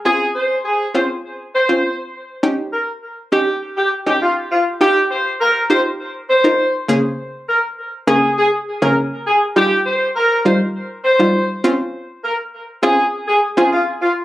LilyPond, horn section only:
\new Staff \with { instrumentName = "Horn section" } { \time 4/4 \key ees \mixolydian \tempo 4 = 101 aes'8 c''8 aes'8 c''16 r8. c''8. r8. | r8 bes'16 r8. g'8 r16 g'16 r16 g'16 f'16 r16 f'16 r16 | g'8 c''8 bes'8 c''16 r8. c''8. r8. | r8 bes'16 r8. aes'8 aes'16 r8 bes'16 r8 aes'16 r16 |
g'8 c''8 bes'8 c''16 r8. c''8. r8. | r8 bes'16 r8. aes'8 r16 aes'16 r16 aes'16 f'16 r16 f'16 r16 | }